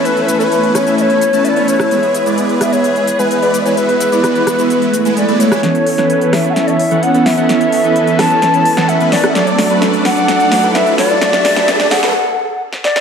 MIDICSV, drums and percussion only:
0, 0, Header, 1, 2, 480
1, 0, Start_track
1, 0, Key_signature, 3, "major"
1, 0, Tempo, 465116
1, 54, Time_signature, 4, 2, 24, 8
1, 13421, End_track
2, 0, Start_track
2, 0, Title_t, "Drums"
2, 53, Note_on_c, 9, 42, 58
2, 60, Note_on_c, 9, 82, 32
2, 156, Note_off_c, 9, 42, 0
2, 164, Note_off_c, 9, 82, 0
2, 173, Note_on_c, 9, 42, 36
2, 276, Note_off_c, 9, 42, 0
2, 293, Note_on_c, 9, 42, 82
2, 300, Note_on_c, 9, 82, 75
2, 396, Note_off_c, 9, 42, 0
2, 403, Note_off_c, 9, 82, 0
2, 413, Note_on_c, 9, 42, 35
2, 420, Note_on_c, 9, 82, 42
2, 517, Note_off_c, 9, 42, 0
2, 524, Note_off_c, 9, 82, 0
2, 534, Note_on_c, 9, 42, 58
2, 541, Note_on_c, 9, 82, 32
2, 637, Note_off_c, 9, 42, 0
2, 644, Note_off_c, 9, 82, 0
2, 654, Note_on_c, 9, 42, 34
2, 757, Note_off_c, 9, 42, 0
2, 773, Note_on_c, 9, 37, 61
2, 773, Note_on_c, 9, 42, 84
2, 781, Note_on_c, 9, 82, 79
2, 877, Note_off_c, 9, 37, 0
2, 877, Note_off_c, 9, 42, 0
2, 884, Note_off_c, 9, 82, 0
2, 894, Note_on_c, 9, 42, 38
2, 901, Note_on_c, 9, 82, 42
2, 997, Note_off_c, 9, 42, 0
2, 1004, Note_off_c, 9, 82, 0
2, 1013, Note_on_c, 9, 42, 58
2, 1021, Note_on_c, 9, 82, 33
2, 1117, Note_off_c, 9, 42, 0
2, 1124, Note_off_c, 9, 82, 0
2, 1133, Note_on_c, 9, 42, 38
2, 1236, Note_off_c, 9, 42, 0
2, 1253, Note_on_c, 9, 42, 83
2, 1260, Note_on_c, 9, 82, 77
2, 1357, Note_off_c, 9, 42, 0
2, 1364, Note_off_c, 9, 82, 0
2, 1373, Note_on_c, 9, 42, 34
2, 1380, Note_on_c, 9, 82, 43
2, 1476, Note_off_c, 9, 42, 0
2, 1484, Note_off_c, 9, 82, 0
2, 1493, Note_on_c, 9, 42, 63
2, 1500, Note_on_c, 9, 82, 33
2, 1596, Note_off_c, 9, 42, 0
2, 1604, Note_off_c, 9, 82, 0
2, 1613, Note_on_c, 9, 42, 37
2, 1717, Note_off_c, 9, 42, 0
2, 1734, Note_on_c, 9, 42, 85
2, 1741, Note_on_c, 9, 82, 69
2, 1837, Note_off_c, 9, 42, 0
2, 1844, Note_off_c, 9, 82, 0
2, 1853, Note_on_c, 9, 37, 79
2, 1853, Note_on_c, 9, 42, 35
2, 1860, Note_on_c, 9, 82, 43
2, 1956, Note_off_c, 9, 37, 0
2, 1956, Note_off_c, 9, 42, 0
2, 1964, Note_off_c, 9, 82, 0
2, 1973, Note_on_c, 9, 42, 66
2, 1980, Note_on_c, 9, 82, 32
2, 2076, Note_off_c, 9, 42, 0
2, 2083, Note_off_c, 9, 82, 0
2, 2093, Note_on_c, 9, 42, 39
2, 2197, Note_off_c, 9, 42, 0
2, 2213, Note_on_c, 9, 42, 88
2, 2220, Note_on_c, 9, 82, 77
2, 2316, Note_off_c, 9, 42, 0
2, 2323, Note_off_c, 9, 82, 0
2, 2333, Note_on_c, 9, 42, 37
2, 2340, Note_on_c, 9, 82, 43
2, 2436, Note_off_c, 9, 42, 0
2, 2443, Note_off_c, 9, 82, 0
2, 2453, Note_on_c, 9, 42, 61
2, 2460, Note_on_c, 9, 82, 30
2, 2556, Note_off_c, 9, 42, 0
2, 2563, Note_off_c, 9, 82, 0
2, 2573, Note_on_c, 9, 42, 36
2, 2676, Note_off_c, 9, 42, 0
2, 2692, Note_on_c, 9, 37, 61
2, 2692, Note_on_c, 9, 42, 88
2, 2699, Note_on_c, 9, 82, 74
2, 2795, Note_off_c, 9, 37, 0
2, 2795, Note_off_c, 9, 42, 0
2, 2803, Note_off_c, 9, 82, 0
2, 2812, Note_on_c, 9, 42, 40
2, 2819, Note_on_c, 9, 82, 45
2, 2916, Note_off_c, 9, 42, 0
2, 2923, Note_off_c, 9, 82, 0
2, 2932, Note_on_c, 9, 42, 63
2, 2939, Note_on_c, 9, 82, 31
2, 3035, Note_off_c, 9, 42, 0
2, 3042, Note_off_c, 9, 82, 0
2, 3052, Note_on_c, 9, 42, 39
2, 3156, Note_off_c, 9, 42, 0
2, 3173, Note_on_c, 9, 42, 91
2, 3180, Note_on_c, 9, 82, 76
2, 3276, Note_off_c, 9, 42, 0
2, 3283, Note_off_c, 9, 82, 0
2, 3293, Note_on_c, 9, 42, 38
2, 3300, Note_on_c, 9, 82, 43
2, 3396, Note_off_c, 9, 42, 0
2, 3404, Note_off_c, 9, 82, 0
2, 3413, Note_on_c, 9, 42, 61
2, 3420, Note_on_c, 9, 82, 33
2, 3516, Note_off_c, 9, 42, 0
2, 3524, Note_off_c, 9, 82, 0
2, 3533, Note_on_c, 9, 42, 38
2, 3636, Note_off_c, 9, 42, 0
2, 3653, Note_on_c, 9, 42, 82
2, 3660, Note_on_c, 9, 82, 75
2, 3756, Note_off_c, 9, 42, 0
2, 3763, Note_off_c, 9, 82, 0
2, 3772, Note_on_c, 9, 42, 37
2, 3779, Note_on_c, 9, 82, 44
2, 3876, Note_off_c, 9, 42, 0
2, 3883, Note_off_c, 9, 82, 0
2, 3893, Note_on_c, 9, 42, 67
2, 3900, Note_on_c, 9, 82, 33
2, 3996, Note_off_c, 9, 42, 0
2, 4003, Note_off_c, 9, 82, 0
2, 4013, Note_on_c, 9, 42, 41
2, 4116, Note_off_c, 9, 42, 0
2, 4133, Note_on_c, 9, 42, 88
2, 4140, Note_on_c, 9, 82, 74
2, 4236, Note_off_c, 9, 42, 0
2, 4243, Note_off_c, 9, 82, 0
2, 4253, Note_on_c, 9, 42, 38
2, 4260, Note_on_c, 9, 82, 42
2, 4356, Note_off_c, 9, 42, 0
2, 4363, Note_off_c, 9, 82, 0
2, 4373, Note_on_c, 9, 37, 54
2, 4373, Note_on_c, 9, 42, 64
2, 4380, Note_on_c, 9, 82, 30
2, 4477, Note_off_c, 9, 37, 0
2, 4477, Note_off_c, 9, 42, 0
2, 4484, Note_off_c, 9, 82, 0
2, 4493, Note_on_c, 9, 42, 36
2, 4597, Note_off_c, 9, 42, 0
2, 4613, Note_on_c, 9, 37, 62
2, 4613, Note_on_c, 9, 42, 92
2, 4620, Note_on_c, 9, 82, 76
2, 4716, Note_off_c, 9, 37, 0
2, 4716, Note_off_c, 9, 42, 0
2, 4723, Note_off_c, 9, 82, 0
2, 4733, Note_on_c, 9, 42, 40
2, 4740, Note_on_c, 9, 82, 44
2, 4836, Note_off_c, 9, 42, 0
2, 4843, Note_off_c, 9, 82, 0
2, 4853, Note_on_c, 9, 42, 63
2, 4860, Note_on_c, 9, 82, 33
2, 4956, Note_off_c, 9, 42, 0
2, 4963, Note_off_c, 9, 82, 0
2, 4973, Note_on_c, 9, 42, 38
2, 5076, Note_off_c, 9, 42, 0
2, 5093, Note_on_c, 9, 42, 87
2, 5100, Note_on_c, 9, 82, 73
2, 5196, Note_off_c, 9, 42, 0
2, 5203, Note_off_c, 9, 82, 0
2, 5213, Note_on_c, 9, 42, 38
2, 5220, Note_on_c, 9, 82, 43
2, 5316, Note_off_c, 9, 42, 0
2, 5324, Note_off_c, 9, 82, 0
2, 5333, Note_on_c, 9, 42, 61
2, 5340, Note_on_c, 9, 82, 31
2, 5436, Note_off_c, 9, 42, 0
2, 5443, Note_off_c, 9, 82, 0
2, 5453, Note_on_c, 9, 42, 39
2, 5556, Note_off_c, 9, 42, 0
2, 5573, Note_on_c, 9, 42, 89
2, 5580, Note_on_c, 9, 82, 75
2, 5676, Note_off_c, 9, 42, 0
2, 5683, Note_off_c, 9, 82, 0
2, 5693, Note_on_c, 9, 37, 72
2, 5693, Note_on_c, 9, 42, 37
2, 5700, Note_on_c, 9, 82, 42
2, 5796, Note_off_c, 9, 37, 0
2, 5796, Note_off_c, 9, 42, 0
2, 5803, Note_off_c, 9, 82, 0
2, 5812, Note_on_c, 9, 38, 46
2, 5812, Note_on_c, 9, 42, 63
2, 5916, Note_off_c, 9, 38, 0
2, 5916, Note_off_c, 9, 42, 0
2, 5933, Note_on_c, 9, 42, 39
2, 6036, Note_off_c, 9, 42, 0
2, 6053, Note_on_c, 9, 46, 100
2, 6156, Note_off_c, 9, 46, 0
2, 6173, Note_on_c, 9, 38, 41
2, 6173, Note_on_c, 9, 42, 40
2, 6276, Note_off_c, 9, 38, 0
2, 6276, Note_off_c, 9, 42, 0
2, 6293, Note_on_c, 9, 42, 65
2, 6396, Note_off_c, 9, 42, 0
2, 6413, Note_on_c, 9, 42, 37
2, 6516, Note_off_c, 9, 42, 0
2, 6532, Note_on_c, 9, 37, 60
2, 6532, Note_on_c, 9, 38, 49
2, 6532, Note_on_c, 9, 46, 99
2, 6635, Note_off_c, 9, 37, 0
2, 6635, Note_off_c, 9, 38, 0
2, 6635, Note_off_c, 9, 46, 0
2, 6652, Note_on_c, 9, 42, 38
2, 6755, Note_off_c, 9, 42, 0
2, 6772, Note_on_c, 9, 38, 50
2, 6772, Note_on_c, 9, 42, 64
2, 6875, Note_off_c, 9, 38, 0
2, 6875, Note_off_c, 9, 42, 0
2, 6892, Note_on_c, 9, 42, 39
2, 6995, Note_off_c, 9, 42, 0
2, 7012, Note_on_c, 9, 46, 94
2, 7115, Note_off_c, 9, 46, 0
2, 7132, Note_on_c, 9, 42, 38
2, 7235, Note_off_c, 9, 42, 0
2, 7253, Note_on_c, 9, 42, 63
2, 7356, Note_off_c, 9, 42, 0
2, 7373, Note_on_c, 9, 42, 38
2, 7476, Note_off_c, 9, 42, 0
2, 7492, Note_on_c, 9, 38, 55
2, 7492, Note_on_c, 9, 46, 97
2, 7595, Note_off_c, 9, 38, 0
2, 7595, Note_off_c, 9, 46, 0
2, 7612, Note_on_c, 9, 42, 38
2, 7715, Note_off_c, 9, 42, 0
2, 7732, Note_on_c, 9, 38, 58
2, 7732, Note_on_c, 9, 42, 67
2, 7835, Note_off_c, 9, 38, 0
2, 7835, Note_off_c, 9, 42, 0
2, 7851, Note_on_c, 9, 42, 38
2, 7954, Note_off_c, 9, 42, 0
2, 7971, Note_on_c, 9, 46, 101
2, 8074, Note_off_c, 9, 46, 0
2, 8092, Note_on_c, 9, 42, 38
2, 8195, Note_off_c, 9, 42, 0
2, 8212, Note_on_c, 9, 42, 62
2, 8315, Note_off_c, 9, 42, 0
2, 8332, Note_on_c, 9, 42, 37
2, 8435, Note_off_c, 9, 42, 0
2, 8451, Note_on_c, 9, 37, 65
2, 8451, Note_on_c, 9, 38, 65
2, 8451, Note_on_c, 9, 46, 111
2, 8555, Note_off_c, 9, 37, 0
2, 8555, Note_off_c, 9, 38, 0
2, 8555, Note_off_c, 9, 46, 0
2, 8571, Note_on_c, 9, 42, 39
2, 8674, Note_off_c, 9, 42, 0
2, 8691, Note_on_c, 9, 38, 61
2, 8691, Note_on_c, 9, 42, 63
2, 8795, Note_off_c, 9, 38, 0
2, 8795, Note_off_c, 9, 42, 0
2, 8811, Note_on_c, 9, 42, 39
2, 8915, Note_off_c, 9, 42, 0
2, 8931, Note_on_c, 9, 46, 103
2, 9034, Note_off_c, 9, 46, 0
2, 9052, Note_on_c, 9, 38, 57
2, 9052, Note_on_c, 9, 42, 39
2, 9155, Note_off_c, 9, 38, 0
2, 9155, Note_off_c, 9, 42, 0
2, 9172, Note_on_c, 9, 42, 63
2, 9275, Note_off_c, 9, 42, 0
2, 9292, Note_on_c, 9, 42, 39
2, 9395, Note_off_c, 9, 42, 0
2, 9412, Note_on_c, 9, 38, 69
2, 9412, Note_on_c, 9, 46, 101
2, 9516, Note_off_c, 9, 38, 0
2, 9516, Note_off_c, 9, 46, 0
2, 9532, Note_on_c, 9, 37, 80
2, 9532, Note_on_c, 9, 42, 38
2, 9636, Note_off_c, 9, 37, 0
2, 9636, Note_off_c, 9, 42, 0
2, 9652, Note_on_c, 9, 38, 71
2, 9652, Note_on_c, 9, 42, 65
2, 9755, Note_off_c, 9, 38, 0
2, 9755, Note_off_c, 9, 42, 0
2, 9772, Note_on_c, 9, 42, 38
2, 9876, Note_off_c, 9, 42, 0
2, 9892, Note_on_c, 9, 38, 70
2, 9892, Note_on_c, 9, 46, 109
2, 9995, Note_off_c, 9, 38, 0
2, 9995, Note_off_c, 9, 46, 0
2, 10012, Note_on_c, 9, 42, 37
2, 10115, Note_off_c, 9, 42, 0
2, 10133, Note_on_c, 9, 38, 74
2, 10133, Note_on_c, 9, 42, 59
2, 10236, Note_off_c, 9, 38, 0
2, 10236, Note_off_c, 9, 42, 0
2, 10253, Note_on_c, 9, 42, 35
2, 10356, Note_off_c, 9, 42, 0
2, 10373, Note_on_c, 9, 38, 85
2, 10373, Note_on_c, 9, 46, 109
2, 10476, Note_off_c, 9, 38, 0
2, 10476, Note_off_c, 9, 46, 0
2, 10493, Note_on_c, 9, 42, 41
2, 10597, Note_off_c, 9, 42, 0
2, 10613, Note_on_c, 9, 38, 79
2, 10613, Note_on_c, 9, 42, 66
2, 10716, Note_off_c, 9, 38, 0
2, 10716, Note_off_c, 9, 42, 0
2, 10733, Note_on_c, 9, 42, 40
2, 10836, Note_off_c, 9, 42, 0
2, 10853, Note_on_c, 9, 38, 80
2, 10853, Note_on_c, 9, 46, 107
2, 10956, Note_off_c, 9, 38, 0
2, 10956, Note_off_c, 9, 46, 0
2, 10973, Note_on_c, 9, 42, 38
2, 11076, Note_off_c, 9, 42, 0
2, 11094, Note_on_c, 9, 38, 85
2, 11094, Note_on_c, 9, 42, 63
2, 11197, Note_off_c, 9, 38, 0
2, 11197, Note_off_c, 9, 42, 0
2, 11214, Note_on_c, 9, 42, 37
2, 11317, Note_off_c, 9, 42, 0
2, 11333, Note_on_c, 9, 38, 85
2, 11333, Note_on_c, 9, 46, 107
2, 11437, Note_off_c, 9, 38, 0
2, 11437, Note_off_c, 9, 46, 0
2, 11454, Note_on_c, 9, 42, 37
2, 11557, Note_off_c, 9, 42, 0
2, 11574, Note_on_c, 9, 38, 92
2, 11574, Note_on_c, 9, 42, 59
2, 11677, Note_off_c, 9, 38, 0
2, 11677, Note_off_c, 9, 42, 0
2, 11694, Note_on_c, 9, 38, 78
2, 11694, Note_on_c, 9, 42, 38
2, 11797, Note_off_c, 9, 38, 0
2, 11797, Note_off_c, 9, 42, 0
2, 11814, Note_on_c, 9, 38, 93
2, 11814, Note_on_c, 9, 46, 102
2, 11917, Note_off_c, 9, 38, 0
2, 11917, Note_off_c, 9, 46, 0
2, 11934, Note_on_c, 9, 38, 84
2, 11934, Note_on_c, 9, 42, 38
2, 12038, Note_off_c, 9, 38, 0
2, 12038, Note_off_c, 9, 42, 0
2, 12054, Note_on_c, 9, 38, 97
2, 12054, Note_on_c, 9, 42, 60
2, 12157, Note_off_c, 9, 38, 0
2, 12157, Note_off_c, 9, 42, 0
2, 12174, Note_on_c, 9, 38, 81
2, 12174, Note_on_c, 9, 42, 37
2, 12278, Note_off_c, 9, 38, 0
2, 12278, Note_off_c, 9, 42, 0
2, 12293, Note_on_c, 9, 38, 103
2, 12293, Note_on_c, 9, 46, 116
2, 12396, Note_off_c, 9, 38, 0
2, 12396, Note_off_c, 9, 46, 0
2, 12414, Note_on_c, 9, 38, 90
2, 12517, Note_off_c, 9, 38, 0
2, 13133, Note_on_c, 9, 38, 50
2, 13236, Note_off_c, 9, 38, 0
2, 13253, Note_on_c, 9, 38, 72
2, 13356, Note_off_c, 9, 38, 0
2, 13374, Note_on_c, 9, 38, 81
2, 13421, Note_off_c, 9, 38, 0
2, 13421, End_track
0, 0, End_of_file